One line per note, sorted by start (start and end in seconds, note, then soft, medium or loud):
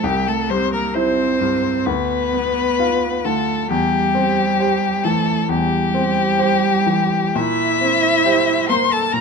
0.04 1.82 C2 medium
0.04 0.28 G3 medium
0.04 0.29 G4 medium
0.27 0.51 A3 medium
0.27 0.51 A4 medium
0.50 1.22 G3 soft
0.50 0.72 C4 medium
0.50 0.72 C5 medium
0.73 0.96 A#3 medium
0.73 0.95 A#4 medium
0.94 1.88 C4 medium
0.94 1.36 E4 medium
0.94 1.87 C5 medium
0.94 1.36 C5 medium
1.41 1.86 G2 soft
1.85 3.66 D2 medium
1.85 3.26 B3 medium
1.85 3.26 B4 medium
2.33 3.07 B3 medium
2.79 3.21 F4 medium
2.79 3.21 F5 medium
3.24 3.70 D3 soft
3.24 3.69 A3 medium
3.24 3.70 A4 medium
3.70 5.45 E2 medium
3.70 5.05 G3 medium
3.70 5.05 G4 medium
4.15 4.86 C4 medium
4.60 5.00 G4 soft
4.60 5.00 C5 medium
5.04 5.76 E3 medium
5.04 5.50 A3 medium
5.04 5.51 A4 medium
5.48 7.32 E2 medium
5.48 7.35 G3 medium
5.48 7.37 G4 medium
5.94 6.67 C4 medium
6.39 6.83 G4 soft
6.39 6.83 C5 medium
6.87 7.36 E3 medium
7.35 9.09 A#2 medium
7.35 8.71 E4 loud
7.35 8.68 E5 loud
7.81 8.52 C4 soft
8.25 8.65 G4 medium
8.25 8.65 C5 medium
8.69 9.21 A#3 medium
8.69 8.93 C5 medium
8.69 8.94 C6 medium
8.91 9.14 A4 medium
8.91 9.14 A5 medium
9.12 9.21 A#2 medium
9.12 9.21 A#4 medium
9.12 9.21 A#5 loud